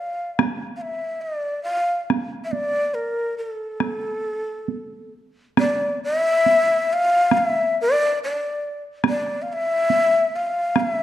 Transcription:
0, 0, Header, 1, 3, 480
1, 0, Start_track
1, 0, Tempo, 853485
1, 228, Time_signature, 2, 2, 24, 8
1, 2144, Tempo, 882353
1, 3584, Tempo, 862069
1, 6128, End_track
2, 0, Start_track
2, 0, Title_t, "Shakuhachi"
2, 0, Program_c, 0, 77
2, 0, Note_on_c, 0, 77, 74
2, 229, Note_off_c, 0, 77, 0
2, 429, Note_on_c, 0, 77, 52
2, 459, Note_on_c, 0, 76, 80
2, 467, Note_off_c, 0, 77, 0
2, 682, Note_on_c, 0, 74, 79
2, 691, Note_off_c, 0, 76, 0
2, 914, Note_off_c, 0, 74, 0
2, 918, Note_on_c, 0, 77, 90
2, 1152, Note_off_c, 0, 77, 0
2, 1375, Note_on_c, 0, 76, 65
2, 1415, Note_on_c, 0, 74, 97
2, 1423, Note_off_c, 0, 76, 0
2, 1654, Note_on_c, 0, 70, 79
2, 1663, Note_off_c, 0, 74, 0
2, 1898, Note_off_c, 0, 70, 0
2, 1901, Note_on_c, 0, 69, 76
2, 2844, Note_off_c, 0, 69, 0
2, 3113, Note_on_c, 0, 74, 89
2, 3333, Note_off_c, 0, 74, 0
2, 3355, Note_on_c, 0, 76, 110
2, 3845, Note_on_c, 0, 77, 104
2, 3854, Note_off_c, 0, 76, 0
2, 4092, Note_on_c, 0, 76, 102
2, 4101, Note_off_c, 0, 77, 0
2, 4320, Note_off_c, 0, 76, 0
2, 4337, Note_on_c, 0, 74, 100
2, 4547, Note_off_c, 0, 74, 0
2, 4576, Note_on_c, 0, 74, 88
2, 4899, Note_off_c, 0, 74, 0
2, 5049, Note_on_c, 0, 74, 92
2, 5233, Note_on_c, 0, 77, 83
2, 5241, Note_off_c, 0, 74, 0
2, 5294, Note_on_c, 0, 76, 113
2, 5302, Note_off_c, 0, 77, 0
2, 5755, Note_on_c, 0, 77, 92
2, 5763, Note_off_c, 0, 76, 0
2, 6002, Note_on_c, 0, 76, 91
2, 6010, Note_off_c, 0, 77, 0
2, 6128, Note_off_c, 0, 76, 0
2, 6128, End_track
3, 0, Start_track
3, 0, Title_t, "Taiko and cinematic ensemble drums"
3, 219, Note_on_c, 9, 37, 64
3, 219, Note_on_c, 9, 48, 59
3, 275, Note_off_c, 9, 37, 0
3, 275, Note_off_c, 9, 48, 0
3, 1181, Note_on_c, 9, 37, 48
3, 1181, Note_on_c, 9, 48, 59
3, 1237, Note_off_c, 9, 37, 0
3, 1237, Note_off_c, 9, 48, 0
3, 1421, Note_on_c, 9, 48, 37
3, 1478, Note_off_c, 9, 48, 0
3, 2138, Note_on_c, 9, 37, 47
3, 2138, Note_on_c, 9, 48, 43
3, 2193, Note_off_c, 9, 37, 0
3, 2193, Note_off_c, 9, 48, 0
3, 2617, Note_on_c, 9, 48, 39
3, 2672, Note_off_c, 9, 48, 0
3, 3102, Note_on_c, 9, 37, 65
3, 3102, Note_on_c, 9, 48, 69
3, 3156, Note_off_c, 9, 37, 0
3, 3156, Note_off_c, 9, 48, 0
3, 3586, Note_on_c, 9, 48, 42
3, 3641, Note_off_c, 9, 48, 0
3, 4060, Note_on_c, 9, 37, 57
3, 4060, Note_on_c, 9, 48, 63
3, 4116, Note_off_c, 9, 37, 0
3, 4116, Note_off_c, 9, 48, 0
3, 5020, Note_on_c, 9, 37, 64
3, 5020, Note_on_c, 9, 48, 60
3, 5075, Note_off_c, 9, 37, 0
3, 5075, Note_off_c, 9, 48, 0
3, 5499, Note_on_c, 9, 48, 48
3, 5555, Note_off_c, 9, 48, 0
3, 5977, Note_on_c, 9, 37, 59
3, 5977, Note_on_c, 9, 48, 56
3, 6032, Note_off_c, 9, 37, 0
3, 6032, Note_off_c, 9, 48, 0
3, 6128, End_track
0, 0, End_of_file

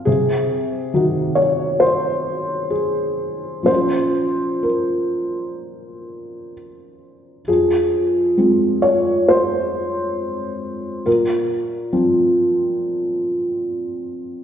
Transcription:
0, 0, Header, 1, 2, 480
1, 0, Start_track
1, 0, Key_signature, -5, "minor"
1, 0, Tempo, 890208
1, 36, Time_signature, 4, 2, 24, 8
1, 1477, Tempo, 955414
1, 2917, Tempo, 920245
1, 4837, Tempo, 878477
1, 7651, End_track
2, 0, Start_track
2, 0, Title_t, "Felt piano"
2, 0, Program_c, 0, 0
2, 0, Control_c, 0, 64, 127
2, 29, Note_on_c, 0, 68, 62
2, 37, Note_on_c, 0, 48, 46
2, 45, Control_c, 0, 64, 0
2, 147, Control_c, 0, 64, 127
2, 495, Note_off_c, 0, 48, 0
2, 505, Note_on_c, 0, 51, 36
2, 509, Note_on_c, 0, 63, 35
2, 510, Note_on_c, 0, 66, 38
2, 730, Note_on_c, 0, 73, 65
2, 743, Note_off_c, 0, 68, 0
2, 970, Note_on_c, 0, 72, 63
2, 978, Note_off_c, 0, 73, 0
2, 1458, Note_on_c, 0, 68, 49
2, 1469, Note_off_c, 0, 72, 0
2, 1923, Note_on_c, 0, 46, 33
2, 1926, Note_on_c, 0, 53, 26
2, 1930, Note_off_c, 0, 51, 0
2, 1930, Note_on_c, 0, 61, 25
2, 1932, Note_off_c, 0, 63, 0
2, 1932, Note_off_c, 0, 66, 0
2, 1939, Note_on_c, 0, 72, 59
2, 1941, Note_on_c, 0, 65, 27
2, 1943, Note_off_c, 0, 68, 0
2, 1962, Control_c, 0, 64, 0
2, 2044, Control_c, 0, 64, 127
2, 2426, Note_on_c, 0, 70, 44
2, 2430, Note_off_c, 0, 72, 0
2, 3401, Note_off_c, 0, 70, 0
2, 3856, Note_off_c, 0, 46, 0
2, 3858, Note_off_c, 0, 53, 0
2, 3860, Note_off_c, 0, 61, 0
2, 3865, Note_off_c, 0, 65, 0
2, 3894, Note_on_c, 0, 68, 61
2, 3898, Note_on_c, 0, 41, 40
2, 3902, Control_c, 0, 64, 0
2, 4002, Control_c, 0, 64, 127
2, 4353, Note_off_c, 0, 41, 0
2, 4360, Note_on_c, 0, 56, 34
2, 4363, Note_on_c, 0, 60, 34
2, 4365, Note_on_c, 0, 65, 41
2, 4595, Note_on_c, 0, 73, 62
2, 4603, Note_off_c, 0, 68, 0
2, 4836, Note_off_c, 0, 73, 0
2, 4836, Note_on_c, 0, 72, 68
2, 5784, Note_off_c, 0, 56, 0
2, 5786, Note_off_c, 0, 60, 0
2, 5787, Note_off_c, 0, 65, 0
2, 5805, Note_on_c, 0, 70, 63
2, 5806, Note_off_c, 0, 72, 0
2, 5809, Note_on_c, 0, 46, 44
2, 5818, Control_c, 0, 64, 0
2, 5901, Control_c, 0, 64, 127
2, 6277, Note_off_c, 0, 46, 0
2, 6279, Note_on_c, 0, 53, 34
2, 6280, Note_on_c, 0, 60, 38
2, 6280, Note_on_c, 0, 65, 37
2, 7651, Note_off_c, 0, 53, 0
2, 7651, Note_off_c, 0, 60, 0
2, 7651, Note_off_c, 0, 65, 0
2, 7651, Note_off_c, 0, 70, 0
2, 7651, End_track
0, 0, End_of_file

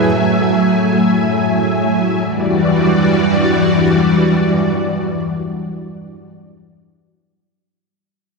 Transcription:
0, 0, Header, 1, 2, 480
1, 0, Start_track
1, 0, Tempo, 500000
1, 8052, End_track
2, 0, Start_track
2, 0, Title_t, "String machine"
2, 0, Program_c, 0, 50
2, 0, Note_on_c, 0, 54, 85
2, 0, Note_on_c, 0, 57, 74
2, 0, Note_on_c, 0, 76, 87
2, 0, Note_on_c, 0, 80, 76
2, 2085, Note_off_c, 0, 80, 0
2, 2086, Note_off_c, 0, 54, 0
2, 2086, Note_off_c, 0, 57, 0
2, 2086, Note_off_c, 0, 76, 0
2, 2120, Note_on_c, 0, 52, 84
2, 2120, Note_on_c, 0, 55, 76
2, 2120, Note_on_c, 0, 66, 79
2, 2121, Note_on_c, 0, 74, 88
2, 6060, Note_off_c, 0, 52, 0
2, 6060, Note_off_c, 0, 55, 0
2, 6060, Note_off_c, 0, 66, 0
2, 6061, Note_off_c, 0, 74, 0
2, 8052, End_track
0, 0, End_of_file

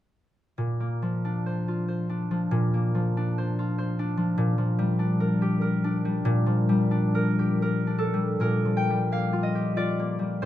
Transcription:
0, 0, Header, 1, 2, 480
1, 0, Start_track
1, 0, Key_signature, -2, "major"
1, 0, Tempo, 677966
1, 414, Time_signature, 3, 2, 24, 8
1, 888, Tempo, 643777
1, 2328, Tempo, 614754
1, 4248, Tempo, 638298
1, 5208, Tempo, 705882
1, 5688, Tempo, 755668
1, 6648, Tempo, 642398
1, 7631, End_track
2, 0, Start_track
2, 0, Title_t, "Harp"
2, 0, Program_c, 0, 46
2, 409, Note_on_c, 0, 46, 49
2, 568, Note_on_c, 0, 58, 34
2, 725, Note_on_c, 0, 53, 37
2, 883, Note_on_c, 0, 62, 36
2, 1043, Note_on_c, 0, 72, 39
2, 1207, Note_on_c, 0, 65, 33
2, 1348, Note_off_c, 0, 72, 0
2, 1357, Note_on_c, 0, 72, 35
2, 1506, Note_off_c, 0, 62, 0
2, 1515, Note_on_c, 0, 62, 34
2, 1665, Note_off_c, 0, 53, 0
2, 1674, Note_on_c, 0, 53, 38
2, 1817, Note_off_c, 0, 46, 0
2, 1826, Note_on_c, 0, 46, 55
2, 1863, Note_off_c, 0, 58, 0
2, 1994, Note_on_c, 0, 58, 36
2, 2141, Note_off_c, 0, 53, 0
2, 2150, Note_on_c, 0, 53, 40
2, 2307, Note_off_c, 0, 62, 0
2, 2316, Note_on_c, 0, 62, 42
2, 2471, Note_off_c, 0, 72, 0
2, 2480, Note_on_c, 0, 72, 43
2, 2633, Note_off_c, 0, 65, 0
2, 2642, Note_on_c, 0, 65, 40
2, 2785, Note_off_c, 0, 72, 0
2, 2795, Note_on_c, 0, 72, 43
2, 2947, Note_off_c, 0, 62, 0
2, 2956, Note_on_c, 0, 62, 44
2, 3090, Note_off_c, 0, 53, 0
2, 3099, Note_on_c, 0, 53, 39
2, 3248, Note_off_c, 0, 46, 0
2, 3257, Note_on_c, 0, 46, 59
2, 3294, Note_off_c, 0, 72, 0
2, 3406, Note_off_c, 0, 53, 0
2, 3416, Note_on_c, 0, 53, 45
2, 3577, Note_on_c, 0, 55, 51
2, 3728, Note_off_c, 0, 62, 0
2, 3737, Note_on_c, 0, 62, 44
2, 3903, Note_on_c, 0, 70, 51
2, 4070, Note_on_c, 0, 67, 47
2, 4215, Note_off_c, 0, 70, 0
2, 4224, Note_on_c, 0, 70, 51
2, 4388, Note_off_c, 0, 62, 0
2, 4397, Note_on_c, 0, 62, 52
2, 4544, Note_off_c, 0, 55, 0
2, 4553, Note_on_c, 0, 55, 50
2, 4694, Note_off_c, 0, 46, 0
2, 4703, Note_on_c, 0, 46, 75
2, 4854, Note_off_c, 0, 53, 0
2, 4864, Note_on_c, 0, 53, 45
2, 4995, Note_off_c, 0, 58, 0
2, 5025, Note_off_c, 0, 55, 0
2, 5034, Note_on_c, 0, 55, 55
2, 5191, Note_off_c, 0, 62, 0
2, 5200, Note_on_c, 0, 62, 49
2, 5353, Note_off_c, 0, 70, 0
2, 5362, Note_on_c, 0, 70, 53
2, 5518, Note_off_c, 0, 67, 0
2, 5527, Note_on_c, 0, 67, 44
2, 5594, Note_off_c, 0, 65, 0
2, 5676, Note_off_c, 0, 70, 0
2, 5684, Note_on_c, 0, 70, 51
2, 5835, Note_off_c, 0, 62, 0
2, 5842, Note_on_c, 0, 62, 42
2, 5915, Note_on_c, 0, 69, 63
2, 6004, Note_off_c, 0, 55, 0
2, 6011, Note_on_c, 0, 55, 41
2, 6172, Note_off_c, 0, 46, 0
2, 6175, Note_off_c, 0, 70, 0
2, 6178, Note_on_c, 0, 46, 47
2, 6184, Note_on_c, 0, 70, 55
2, 6331, Note_off_c, 0, 53, 0
2, 6338, Note_on_c, 0, 53, 35
2, 6347, Note_off_c, 0, 69, 0
2, 6413, Note_on_c, 0, 79, 64
2, 6490, Note_off_c, 0, 55, 0
2, 6498, Note_on_c, 0, 55, 38
2, 6635, Note_on_c, 0, 58, 37
2, 6640, Note_on_c, 0, 77, 64
2, 6790, Note_on_c, 0, 65, 43
2, 6867, Note_on_c, 0, 75, 53
2, 6948, Note_off_c, 0, 67, 0
2, 6957, Note_on_c, 0, 67, 39
2, 7110, Note_off_c, 0, 65, 0
2, 7117, Note_on_c, 0, 65, 42
2, 7119, Note_on_c, 0, 74, 64
2, 7280, Note_off_c, 0, 58, 0
2, 7283, Note_off_c, 0, 75, 0
2, 7289, Note_on_c, 0, 58, 39
2, 7425, Note_off_c, 0, 55, 0
2, 7434, Note_on_c, 0, 55, 39
2, 7606, Note_on_c, 0, 72, 70
2, 7625, Note_off_c, 0, 46, 0
2, 7631, Note_off_c, 0, 53, 0
2, 7631, Note_off_c, 0, 55, 0
2, 7631, Note_off_c, 0, 58, 0
2, 7631, Note_off_c, 0, 62, 0
2, 7631, Note_off_c, 0, 65, 0
2, 7631, Note_off_c, 0, 67, 0
2, 7631, Note_off_c, 0, 70, 0
2, 7631, Note_off_c, 0, 72, 0
2, 7631, Note_off_c, 0, 74, 0
2, 7631, Note_off_c, 0, 77, 0
2, 7631, Note_off_c, 0, 79, 0
2, 7631, End_track
0, 0, End_of_file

